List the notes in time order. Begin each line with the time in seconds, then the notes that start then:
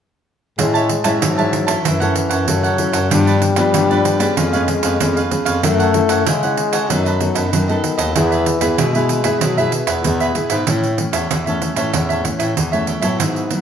0.58 A2 G#3 C#4 E4 G#4 C#5 E5 A5, pandeiro
0.74 C#5 E5 A5, pandeiro
0.89 muted cavaquinho stroke, pandeiro
1.04 A2 G#3 C#4 E4 C#5 E5 A5, pandeiro
1.21 G#2 E3 F#3 G#4 C#5 E5 A5, pandeiro
1.38 G#3 C#4 E4 C#5 E5 A5, pandeiro
1.53 pandeiro
1.67 C#4 E4 A4 C#5 E5 A5, pandeiro
1.84 F#2 E3 F#3 E4 A4 C#5 F#5, pandeiro
2.00 C#4 E4 A4 C#5 F#5, pandeiro
2.15 muted cavaquinho stroke, pandeiro
2.30 F#2 A4 C#5 F#5, pandeiro
2.48 F#2 C#3 F#3 C#4 E4 A4, pandeiro
2.63 A4 C#5 F#5, pandeiro
2.78 C#4 E4 A4, pandeiro
2.92 F#2 A4 C#5 F#5, pandeiro
3.10 G2 F3 G3 B3 D4 F4 G4 B4 D5, pandeiro
3.27 G4 B4 D5, pandeiro
3.42 muted cavaquinho stroke, pandeiro
3.56 G2 F3 B3 D4 G4 B4 D5, pandeiro
3.74 G2 D3 F4 G4 B4 D5, pandeiro
3.90 F3 B3 D4 G4 B4 D5, pandeiro
4.05 pandeiro
4.20 B3 C#4 G4 G#4 B4 D5, pandeiro
4.37 F2 F3 G#3 F4 B4 C#5 F5, pandeiro
4.53 B3 C#4 G#4 B4 C#5 F5, pandeiro
4.68 muted cavaquinho stroke, pandeiro
4.83 F2 B4 C#5 F5, pandeiro
5.00 F2 F3 B3 C#4 G#4, pandeiro
5.17 B4 C#5 F5, pandeiro
5.31 B3 C#4 G#4, pandeiro
5.45 F2 B4 C#5 F5, pandeiro
5.63 F#2 F#3 A3 C#4 E4 A4 C#5 F#5, pandeiro
5.80 A4 C#5 F#5, pandeiro
5.94 C#4 E4 A4, muted cavaquinho stroke, pandeiro
6.09 F#2 A4 C#5 F#5, pandeiro
6.26 C#3 G#3 E4 A4 C#5 F#5, pandeiro
6.43 C#4 E4 C#5 F#5, pandeiro
6.57 pandeiro
6.72 A4 C#5 F#5, pandeiro
6.90 F#2 F#3 B3 D#4 A4 B4 D#5, pandeiro
7.05 A4 B4 D#5, pandeiro
7.20 B3 D#4 A4, muted cavaquinho stroke, pandeiro
7.35 F#2 A4 B4 D#5, pandeiro
7.46 D3
7.53 F#2 D#3 F#3, pandeiro
7.68 B3 D#4 A4 B4 D#5, pandeiro
7.84 pandeiro
7.98 D#2 A4 B4 D#5, pandeiro
8.15 E2 E3 B3 E4 G#4 B4 E5, pandeiro
8.31 G#4 B4 E5, pandeiro
8.46 muted cavaquinho stroke, pandeiro
8.61 E2 B3 E4 G#4 B4 E5, pandeiro
8.78 B2 G#3 E4 G#4 B4 E5, pandeiro
8.94 B3 E4 G#4 B4 E5, pandeiro
9.09 pandeiro
9.24 B3 E4 G#4 B4 E5, pandeiro
9.41 B2 E3 F#3 E4 G#4 B4 E5, pandeiro
9.57 B3 E4 G#4 B4 E5, pandeiro
9.72 E3, muted cavaquinho stroke, pandeiro
9.87 E2 G#4 B4 E5, pandeiro
10.04 E2 B2 B3 E4 G#4, pandeiro
10.20 G#4 B4 E5, pandeiro
10.35 B3 E4 G#4, pandeiro
10.50 G#2 G#4 B4 E5, pandeiro
10.67 A2 E3 A3 C#4 E4 A4 C#5 E5, pandeiro
10.84 pandeiro
10.98 E3 A3 C#4, muted cavaquinho stroke, pandeiro
11.13 E2 A4 C#5 E5, pandeiro
11.30 E2 E3 E4 A4 C#5 E5, pandeiro
11.46 E3 A3 C#4 A4 C#5 E5, pandeiro
11.62 pandeiro
11.76 A2 E3 A3 C#4 A4 C#5 E5, pandeiro
11.93 E2 A2 E4 A4 C#5 E5, pandeiro
12.09 A4 C#5 E5, pandeiro
12.24 E3 A3 C#4, muted cavaquinho stroke, pandeiro
12.39 A2 A4 C#5 E5, pandeiro
12.57 E2 E3, pandeiro
12.72 E3 A3 C#4 A4 C#5 E5, pandeiro
12.86 E4 A4 C#5 E5, pandeiro
13.01 A2 F#3 B3 E4 A4 C#5 E5, pandeiro
13.19 G#2 F#4 G#4 B4 E5, pandeiro
13.36 pandeiro
13.50 F#3 B3 E4, muted cavaquinho stroke, pandeiro